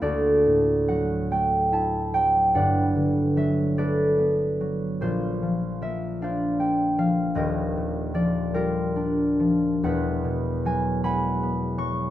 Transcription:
0.00 2.57 D2 medium
0.00 1.71 E4 medium
0.00 3.93 F#4 medium
0.00 3.78 A4 medium
0.00 2.54 D5 loud
0.00 1.05 E5 medium
0.46 2.58 A2 medium
0.88 2.13 F#3 medium
0.88 2.54 F#5 loud
1.31 3.77 A3 medium
1.31 2.01 G5 loud
1.72 2.58 E4 medium
1.72 5.05 A5 medium
2.14 3.36 F#3 medium
2.14 2.84 G5 loud
2.54 5.05 G1 medium
2.54 5.05 G2 medium
2.54 3.77 B4 medium
2.54 3.77 D5 medium
2.54 5.05 F#5 medium
2.96 5.05 D3 medium
3.37 4.59 F#3 medium
3.37 4.06 E5 medium
3.78 5.05 A3 medium
3.78 5.06 A4 medium
3.78 5.06 B4 medium
3.78 6.22 D5 medium
4.19 5.05 B3 medium
4.61 5.05 F#3 medium
5.01 7.41 A#1 medium
5.01 7.42 A#2 medium
5.01 8.55 F4 medium
5.01 6.23 C5 medium
5.43 6.97 F3 medium
5.82 6.59 A#3 medium
5.82 6.49 E5 medium
6.22 8.95 D4 medium
6.22 7.43 C5 medium
6.22 8.13 D5 medium
6.22 6.98 F5 medium
6.60 9.88 A#3 medium
6.60 7.26 G5 medium
6.98 8.13 F3 medium
6.98 9.88 F5 loud
7.35 9.86 D#1 medium
7.35 9.87 D#2 medium
7.35 8.54 G4 medium
7.35 8.53 A#4 medium
7.35 9.87 D#5 medium
7.77 9.88 A#2 medium
8.14 9.38 F3 medium
8.14 9.87 D5 loud
8.54 9.87 G3 medium
8.54 9.88 F4 medium
8.54 9.88 G4 medium
8.54 9.88 A#4 medium
8.96 9.87 D4 medium
9.40 9.87 F3 medium
9.83 12.10 E1 medium
9.83 12.10 E2 medium
9.83 12.10 B4 medium
9.83 11.04 F#5 loud
10.24 12.10 B2 medium
10.65 11.77 F#3 medium
10.65 11.03 G#5 loud
11.03 12.10 G#3 medium
11.03 12.10 F#5 medium
11.03 12.10 G#5 medium
11.03 12.10 B5 loud
11.43 12.10 B3 medium
11.78 12.10 F#3 medium
11.78 12.10 C#6 loud

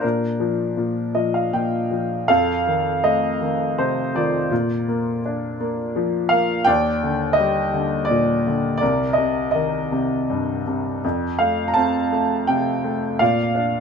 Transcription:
0.01 0.76 A#2 medium
0.01 1.11 D4 soft
0.01 1.10 A#4 medium
0.40 1.14 F3 soft
0.77 1.52 A#2 soft
1.15 1.90 F3 soft
1.15 1.33 D#5 soft
1.34 1.52 F5 soft
1.53 2.27 A#2 soft
1.53 2.25 G5 soft
1.91 2.28 F3 soft
2.28 4.47 F2 soft
2.28 3.37 A4 medium
2.28 3.06 F5 medium
2.67 3.40 D#3 soft
3.04 4.47 A3 soft
3.04 3.80 D#5 medium
3.41 4.13 D#3 soft
3.78 4.49 C3 soft
3.78 4.16 C5 medium
4.15 4.50 D#3 soft
4.15 5.20 F4 soft
4.15 4.84 D5 medium
4.51 6.62 A#2 medium
4.88 5.59 A#3 soft
5.25 6.63 D4 soft
5.60 6.30 A#3 soft
5.96 6.64 F3 soft
6.29 6.65 A#3 soft
6.29 6.63 F5 medium
6.64 8.78 D#2 medium
6.64 7.70 D5 medium
6.64 7.39 G5 medium
7.03 7.72 D3 soft
7.33 8.03 D#5 medium
7.39 8.78 G3 soft
7.74 8.45 D3 soft
8.05 8.75 D5 medium
8.10 8.79 A#2 soft
8.47 8.81 D3 soft
8.77 9.53 A#4 medium
8.77 9.17 D5 medium
8.82 11.00 C2 medium
9.13 9.50 D#5 medium
9.18 9.90 C3 soft
9.51 11.00 D#3 soft
9.51 10.63 A#4 soft
9.51 10.61 D#5 medium
9.92 10.66 C3 soft
10.30 11.02 G2 soft
10.67 11.03 C3 soft
11.04 13.17 F2 medium
11.39 12.11 A3 soft
11.39 11.70 F5 medium
11.68 11.76 A#5 medium
11.74 13.17 C4 soft
11.74 12.50 A5 medium
12.12 12.83 A3 soft
12.47 13.18 C3 soft
12.47 13.22 G5 medium
12.84 13.19 A3 soft
13.19 13.80 A#2 medium
13.19 13.80 D5 soft
13.19 13.80 F5 medium
13.55 13.80 D4 soft

